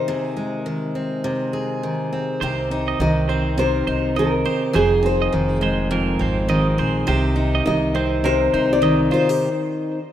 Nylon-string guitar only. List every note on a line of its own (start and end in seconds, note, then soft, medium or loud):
0.00 1.81 C5 medium
3.01 3.59 D#5 loud
3.59 4.19 C5 medium
4.19 4.75 A#4 medium
4.76 5.06 G#4 medium
5.06 5.89 C5 medium
7.67 8.25 D#5 loud
8.25 8.72 C5 loud
8.73 9.13 D5 medium
9.14 10.12 C5 medium